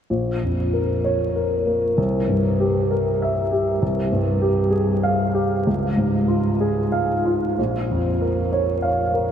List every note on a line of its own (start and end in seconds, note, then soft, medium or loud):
0.10 1.93 A#1 soft
0.43 0.92 F2 soft
0.73 1.23 A#4 soft
1.04 1.54 C#5 soft
1.36 1.85 A#4 soft
1.66 1.97 A#3 soft
1.97 3.78 C2 soft
2.28 2.78 G2 soft
2.60 3.09 G4 soft
2.91 3.39 A#4 soft
3.22 3.70 E5 soft
3.52 3.82 G4 soft
3.82 5.62 C2 soft
4.12 4.60 G2 soft
4.42 4.91 G4 soft
4.70 5.21 G#4 soft
5.03 5.53 F5 soft
5.34 5.66 G4 soft
5.67 7.54 C#2 soft
5.97 6.48 G#2 soft
6.28 6.79 F4 soft
6.60 7.12 G#4 soft
6.92 7.45 F5 soft
7.25 7.58 F4 soft
7.58 9.32 A#1 soft
7.91 8.40 F2 soft
8.22 8.71 A#4 soft
8.52 9.02 C#5 soft
8.82 9.32 F5 soft
9.14 9.32 A#4 soft